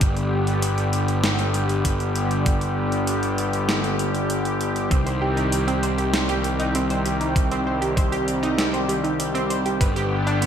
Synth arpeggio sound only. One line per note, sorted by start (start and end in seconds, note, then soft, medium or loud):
4.91 5.06 C4 medium
5.06 5.17 C5 medium
5.22 5.32 G4 medium
5.37 5.47 D#4 medium
5.68 5.78 C4 loud
5.83 5.93 C5 medium
5.98 6.09 G4 medium
6.14 6.28 C5 medium
6.29 6.35 G4 loud
6.60 6.70 D#4 loud
6.75 6.90 C4 medium
6.90 7.01 C5 medium
7.05 7.16 G4 medium
7.21 7.31 D#4 medium
7.51 7.62 C4 loud
7.67 7.77 C5 medium
7.82 7.92 G4 medium
7.97 8.12 C5 medium
8.12 8.19 G4 loud
8.43 8.53 D#4 loud
8.58 8.73 C4 medium
8.73 8.84 C5 medium
8.89 8.99 G4 medium
9.04 9.15 D#4 medium
9.35 9.45 C4 loud
9.50 9.61 C5 medium
9.66 9.76 G4 medium
9.81 9.95 B4 medium
9.96 10.02 G4 loud
10.27 10.37 D4 loud
10.42 10.46 B3 medium